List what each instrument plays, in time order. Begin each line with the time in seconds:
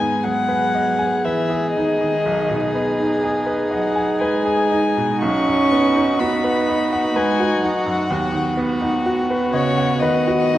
Already playing: grand piano G#2 D#3 B3, cello G#3, viola B3, violin G#4 G#5
0.00 grand piano D#4
0.23 cello F#3, grand piano G#4, violin F#5
0.48 grand piano B4
0.75 grand piano D#5
0.99 grand piano G#5
1.25 cello E3, grand piano B4, violin E5
1.50 grand piano G#4
1.72 cello D#3, violin D#5
1.77 grand piano D#4
2.01 grand piano D#3
2.24 grand piano B1, viola D#4
2.50 grand piano B2
2.75 grand piano B3
3.00 grand piano D#4
3.24 grand piano G#4
3.46 grand piano B4
3.69 cello F#3, grand piano D#5, violin F#5
3.95 grand piano G#5
4.19 cello G#3, grand piano B4, violin G#5
4.45 grand piano G#4
4.71 grand piano D#4
4.97 grand piano B2
5.21 grand piano B1, cello C#4, violin F#4 C#6
5.47 grand piano F#2
5.72 grand piano B3
5.96 grand piano D#4
6.19 cello B3, grand piano F#4, violin B5
6.44 grand piano B4
6.69 grand piano D#5
6.93 grand piano F#5
7.16 cello G#3, grand piano B4, violin G#5
7.40 grand piano F#4
7.61 cello F#3, grand piano D#4, violin F#5
7.86 grand piano F#2
8.10 grand piano D#2, viola B3
8.32 grand piano D#3
8.57 grand piano B3
8.81 grand piano D#4
9.06 grand piano F#4
9.30 grand piano B4
9.52 cello C#3, violin C#5, grand piano D#5
9.78 grand piano F#5
9.99 cello D#3, grand piano B4, violin D#5
10.28 grand piano F#4
10.54 grand piano D#4